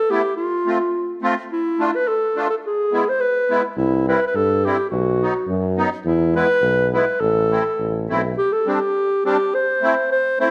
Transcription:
Already playing: clarinet A4
0.10 accordion A3 B3 E4, clarinet G4
0.37 clarinet F4
0.66 accordion A3 C4 F4
1.22 accordion A3 C4 F4
1.51 clarinet E4
1.79 accordion A3 D4 F4
1.95 clarinet B4
2.08 clarinet A4
2.35 accordion A3 D4 F4
2.50 clarinet A4
2.66 clarinet G#4
2.92 accordion G#3 B3 E4
3.09 clarinet C5
3.20 clarinet B4
3.49 accordion G#3 B3 E4
3.77 tuba C2, clarinet E4
4.07 accordion G3 C4 E4, clarinet B4
4.27 clarinet B4
4.34 tuba G2, clarinet A4
4.65 accordion G3 C4 E4, clarinet G4
4.90 tuba B1, clarinet F#4
5.22 accordion F#3 B3 D#4
5.48 tuba F#2
5.77 accordion F#3 B3 D#4
6.05 tuba E2, clarinet E4
6.34 accordion G#3 B3 E4, clarinet B4
6.62 tuba B1
6.93 accordion G#3 B3 E4, clarinet B4
7.20 tuba A1, clarinet A4
7.51 accordion A3 C4 E4
7.79 tuba A1
8.09 tuba B1, accordion A3 C4 E4
8.38 clarinet G4
8.52 clarinet A4
8.66 accordion G3 C4 D4, clarinet G4
9.25 accordion G3 C4 D4, clarinet G4
9.54 clarinet C5
9.81 accordion A3 C4 E4
10.12 clarinet C5
10.40 accordion A3 C4 E4, clarinet C5

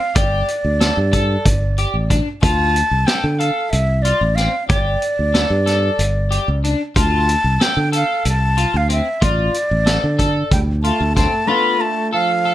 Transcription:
Already playing: flute F5
0.15 fingered electric bass G1, clean electric guitar G4, flute D5, kick, closed hi-hat
0.48 closed hi-hat
0.65 fingered electric bass D2
0.80 clean electric guitar A4, snare, closed hi-hat
0.97 fingered electric bass G2
1.13 clean electric guitar A4, kick, closed hi-hat
1.45 fingered electric bass G1, kick, closed hi-hat
1.78 clean electric guitar G4, closed hi-hat
1.94 fingered electric bass A1
2.10 clean electric guitar D4, kick, closed hi-hat
2.42 fingered electric bass D2, clean electric guitar F4, flute A5, kick, closed hi-hat
2.76 closed hi-hat
2.91 fingered electric bass C2
3.07 clean electric guitar A4, flute G5, snare, closed hi-hat
3.24 fingered electric bass D3
3.39 clean electric guitar A4, flute F5, closed hi-hat
3.70 fingered electric bass C2, flute E5, closed hi-hat
4.02 clean electric guitar F4, flute D5, closed hi-hat
4.21 fingered electric bass A1
4.35 clean electric guitar C4, flute F5, snare, closed hi-hat
4.68 fingered electric bass G1, clean electric guitar G4, flute D5, kick, closed hi-hat
5.02 closed hi-hat
5.19 fingered electric bass D2
5.34 clean electric guitar A4, snare, closed hi-hat
5.50 fingered electric bass G2
5.66 clean electric guitar A4, snare, closed hi-hat
5.99 fingered electric bass G1, closed hi-hat
6.31 clean electric guitar G4, closed hi-hat
6.48 fingered electric bass C#2
6.64 clean electric guitar D4, closed hi-hat
6.96 fingered electric bass D2, clean electric guitar F4, flute A5, kick, closed hi-hat
7.29 closed hi-hat
7.44 fingered electric bass C2
7.60 clean electric guitar A4, flute G5, snare, closed hi-hat
7.77 fingered electric bass D3
7.92 clean electric guitar A4, flute F5, closed hi-hat
8.25 fingered electric bass C2, flute A5, closed hi-hat
8.57 clean electric guitar F4, closed hi-hat
8.74 fingered electric bass D2, flute F5
8.89 clean electric guitar C4, flute E5, closed hi-hat
9.21 fingered electric bass A1, clean electric guitar F4, flute D5, kick, closed hi-hat
9.54 closed hi-hat
9.71 fingered electric bass A1
9.86 clean electric guitar A4, snare, closed hi-hat
10.04 fingered electric bass D3
10.19 clean electric guitar A4, kick, closed hi-hat
10.51 fingered electric bass D2, trombone G3, flute G5, kick, closed hi-hat
10.83 trombone A3, clean electric guitar F4, flute A5, closed hi-hat
11.01 fingered electric bass D2
11.15 trombone A3, clean electric guitar C4, flute A5, kick, snare, closed hi-hat
11.47 hollow-body jazz guitar A3 D4 F4 A4, trombone B3, clean electric guitar F4, flute B5
11.81 trombone A3, flute A5
12.13 trombone F3, clean electric guitar A4, flute F5
12.45 clean electric guitar A4

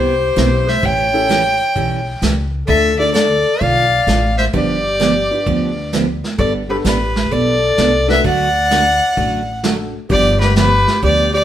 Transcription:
Already playing: upright bass C2, steel-string acoustic guitar C3 G3 B3 E4 G4, clarinet G4, fiddle C5
0.36 upright bass B1, steel-string acoustic guitar C3 G3 B3 E4 G4, upright piano C4 E4 G4 B4, snare, hi-hat pedal
0.68 clarinet C5, fiddle E5, snare
0.82 upright bass A1, steel-string acoustic guitar E3 G3 C#4 E4 A4, clarinet C#5, fiddle G5, brush sweep, kick
1.13 upright piano C#4 E4 G4 A4
1.29 steel-string acoustic guitar E3 G3 C#4 E4 A4, snare, hi-hat pedal
1.76 upright bass B1, steel-string acoustic guitar E3 G3 C#4 E4 A4, brush sweep, kick
2.22 upright bass C#2, steel-string acoustic guitar E3 G3 C#4 E4 A4, snare, hi-hat pedal
2.67 upright bass D2, steel-string acoustic guitar D3 A3 D4 F4 A4, clarinet A4, fiddle E5, brush sweep, kick
2.98 upright piano A3 D4 F4 A4, clarinet A4, fiddle D5
3.13 steel-string acoustic guitar D3 A3 D4 F4 A4, clarinet A4, fiddle D5, snare, hi-hat pedal
3.61 upright bass B1, steel-string acoustic guitar D3 A3 D4 F4 A4, clarinet D5, fiddle F5, brush sweep, kick
4.07 upright bass A1, steel-string acoustic guitar D3 A3 D4 F4 A4, snare, hi-hat pedal
4.38 clarinet C5, fiddle E5, snare
4.53 upright bass G1, steel-string acoustic guitar D3 F3 B3 D4 G4, upright piano B3 D4 F4 G4, clarinet G4, fiddle D5, brush sweep, kick
5.00 steel-string acoustic guitar D3 F3 B3 D4 G4, snare, hi-hat pedal
5.31 upright piano B3 D4 F4 G4
5.46 upright bass D2, steel-string acoustic guitar D3 F3 B3 D4 G4, brush sweep, kick
5.93 steel-string acoustic guitar D3 F3 B3 D4 G4, snare, hi-hat pedal
6.24 snare
6.38 upright bass G1, steel-string acoustic guitar G3 B3 D4 A4, clarinet A4, fiddle D5, brush sweep, kick
6.69 upright piano B3 D4 G4 A4, clarinet G4, fiddle B4
6.85 upright bass A1, steel-string acoustic guitar G3 B3 D4 A4, clarinet G4, fiddle B4, snare, hi-hat pedal
7.16 snare
7.31 upright bass B1, steel-string acoustic guitar G3 B3 D4 A4, clarinet A4, fiddle D5, brush sweep, kick
7.78 upright bass C2, steel-string acoustic guitar G3 B3 D4 A4, snare, hi-hat pedal
8.07 upright piano A3 D4 F#4 A4, clarinet B4, fiddle E5, snare
8.24 upright bass D2, steel-string acoustic guitar D3 F#3 A3 D4 F#4, clarinet D5, fiddle F#5, brush sweep, kick
8.71 steel-string acoustic guitar D3 F#3 A3 D4 F#4, snare, hi-hat pedal
9.17 upright bass A1, steel-string acoustic guitar D3 F#3 A3 D4 F#4, brush sweep, kick
9.63 steel-string acoustic guitar D3 F#3 A3 D4 F#4, upright piano A3 D4 F#4 A4, snare, hi-hat pedal
10.09 upright bass G1, steel-string acoustic guitar D3 F3 B3 D4 G4, upright piano B3 D4 F4 G4, clarinet G4, fiddle D5, brush sweep, kick
10.40 clarinet G4, fiddle B4, snare
10.56 steel-string acoustic guitar D3 F3 B3 D4 G4, clarinet G4, fiddle B4, snare, hi-hat pedal
10.87 snare
11.02 upright bass D2, steel-string acoustic guitar D3 F3 B3 D4 G4, clarinet G4, fiddle D5, brush sweep, kick
11.34 clarinet G4, fiddle D5

